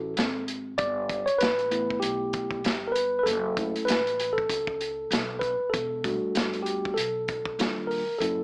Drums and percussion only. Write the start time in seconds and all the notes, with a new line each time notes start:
0.17 snare, closed hi-hat
0.48 closed hi-hat
0.78 kick, closed hi-hat
1.09 kick, closed hi-hat
1.27 closed hi-hat
1.41 snare, closed hi-hat
1.59 closed hi-hat
1.71 closed hi-hat
1.90 kick
2.02 closed hi-hat
2.33 kick, closed hi-hat
2.51 kick
2.64 snare, closed hi-hat
2.95 closed hi-hat
3.27 closed hi-hat
3.57 kick, closed hi-hat
3.76 closed hi-hat
3.88 snare, closed hi-hat
4.07 closed hi-hat
4.20 closed hi-hat
4.38 kick
4.50 kick, closed hi-hat
4.67 kick
4.81 closed hi-hat
5.12 snare, closed hi-hat
5.41 kick, closed hi-hat
5.74 kick, closed hi-hat
6.04 kick, closed hi-hat
6.35 snare, closed hi-hat
6.53 closed hi-hat
6.66 closed hi-hat
6.85 kick
6.97 closed hi-hat
7.28 kick, closed hi-hat
7.45 kick
7.59 snare, closed hi-hat
7.91 open hi-hat
8.21 closed hi-hat